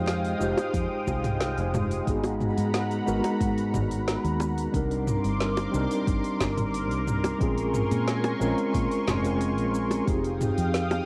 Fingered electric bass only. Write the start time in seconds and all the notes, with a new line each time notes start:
Already playing: F2
0.41 F1
0.74 F2
1.07 C2
1.58 F1
2.07 G#1
2.58 G#2
3.08 G#1
3.40 G#2
3.74 G#1
4.24 D#2
4.74 C2
5.25 G1
5.74 C2
6.07 G1
6.41 G1
6.91 C2
7.41 A#1
7.91 A#2
8.41 A#1
8.74 A#2
9.08 F1
9.58 A#1
10.07 F1
10.58 F2